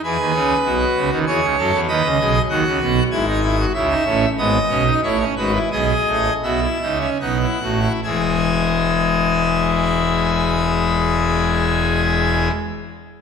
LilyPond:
<<
  \new Staff \with { instrumentName = "Pipe organ" } { \time 3/4 \key e \major \tempo 4 = 86 << { b'2 cis''4 | dis''4 fis''4 gis''4 | e''4 dis''4 cis''8 b'8 | dis''4 e''4 fis''4 |
<e gis e''>2.~ | <e gis e''>2. | } \\ { gis'4 fis'4 gis'8 a'8 | b'8 gis'8 fis'4 e'16 dis'16 e'16 fis'16 | e'16 dis'16 cis'8 b8 cis'16 dis'16 e'16 cis'16 fis'16 e'16 | gis'4 fis'16 e'16 dis'16 cis'16 dis'16 e'16 fis'16 e'16 |
gis'2.~ | gis'2. | } >> }
  \new Staff \with { instrumentName = "Pipe organ" } { \clef bass \time 3/4 \key e \major <e, e>16 <dis, dis>16 <cis, cis>8 <b,, b,>8 <cis, cis>16 <dis, dis>16 <e, e>16 <cis, cis>16 <fis, fis>16 <e, e>16 | <dis, dis>16 <cis, cis>16 <b,, b,>8 <dis, dis>16 <cis, cis>16 <b,, b,>8 <gis,, gis,>4 | <cis, cis>8 <a,, a,>8 <gis,, gis,>8 <b,, b,>8 <a,, a,>8 <gis,, gis,>8 | <b,, b,>8 <a,, a,>8 <b,, b,>8 <cis, cis>8 <b,, b,>8 <a,, a,>8 |
<e,, e,>2.~ | <e,, e,>2. | }
>>